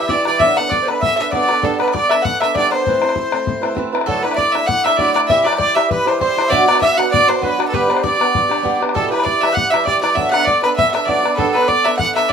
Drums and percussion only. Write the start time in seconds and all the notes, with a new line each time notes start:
0.09 bodhran
0.25 bodhran
0.40 bodhran
0.57 bodhran
0.72 bodhran
0.88 bodhran
1.03 bodhran
1.33 bodhran
1.49 bodhran
1.63 bodhran
1.80 bodhran
1.88 bodhran
1.95 bodhran
2.11 bodhran
2.25 bodhran
2.42 bodhran
2.55 bodhran
2.72 bodhran
2.87 bodhran
3.02 bodhran
3.09 bodhran
3.16 bodhran
3.32 bodhran
3.47 bodhran
3.63 bodhran
3.77 bodhran
3.95 bodhran
4.01 bodhran
4.08 bodhran
4.25 bodhran
4.31 bodhran
4.38 bodhran
4.55 bodhran
4.69 bodhran
4.86 bodhran
4.99 bodhran
5.16 bodhran
5.30 bodhran
5.46 bodhran
5.53 bodhran
5.59 bodhran
5.77 bodhran
5.91 bodhran
6.07 bodhran
6.21 bodhran
6.38 bodhran
6.52 bodhran
6.69 bodhran
6.75 bodhran
6.82 bodhran
6.99 bodhran
7.14 bodhran
7.30 bodhran
7.43 bodhran
7.60 bodhran
7.74 bodhran
7.90 bodhran
7.97 bodhran
8.04 bodhran
8.21 bodhran
8.35 bodhran
8.51 bodhran
8.65 bodhran
8.83 bodhran
8.89 bodhran
8.96 bodhran
9.13 bodhran
9.20 bodhran
9.26 bodhran
9.43 bodhran
9.57 bodhran
9.74 bodhran
9.87 bodhran
10.04 bodhran
10.17 bodhran
10.34 bodhran
10.40 bodhran
10.47 bodhran
10.64 bodhran
10.78 bodhran
10.95 bodhran
11.09 bodhran
11.26 bodhran
11.39 bodhran
11.55 bodhran
11.62 bodhran
11.69 bodhran
11.85 bodhran
11.99 bodhran
12.17 bodhran